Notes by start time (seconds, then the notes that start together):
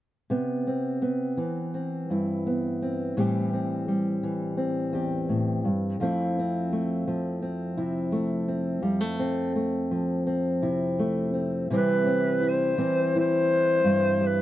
0.30 C3 B3
0.67 C4
1.02 B3
1.37 E3
1.74 C4
2.10 G2 E4
2.47 B3
2.82 C4
3.17 A2 E3 G3 C4 G4
3.53 C4
3.88 G3
4.23 E3
4.57 C4
4.93 E2 G4
5.29 A2
5.65 G2
6.00 F2 F3 A3 C4 E4
6.39 C4
6.72 A3
7.08 F3
7.42 C4
7.77 C3 E4
8.12 A3
8.48 C4
8.82 F2 G3
9.01 A3
9.19 C4
9.56 A3
9.91 F3
10.27 C4
10.62 C3 E4
10.99 A3
11.33 C4
11.70 C3 E3 G3 C4 E4
11.76 B4
12.06 C4
12.43 E4
12.48 C5
12.78 E3 C4
13.16 E4
13.20 C5
13.84 G2
14.20 G3
14.26 B4